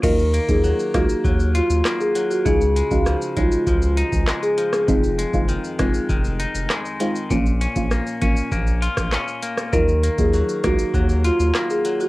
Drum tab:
CC |x---------------|----------------|----------------|----------------|
HH |--x---x---x---x-|--x---x---x---x-|--x---x---x---x-|--x---x---x---x-|
SH |xxxxxxxxxxxxxxxx|xxxxxxxxxxxxxxxx|xxxxxxxxxxxxxxxx|xxxxxxxxxxxxxxxx|
CP |------------x---|------------x---|------------x---|------------x---|
SD |------r-----r---|----r-------r--r|------r-----r---|----r------rr--r|
BD |o--o--o-o-------|o--o--o-o--o----|o--o--o-o-------|o--o--o-o--o----|

CC |----------------|
HH |--x---x---x---x-|
SH |xxxxxxxxxxxxxxxx|
CP |------------x---|
SD |------r-----r---|
BD |o--o--o-o-------|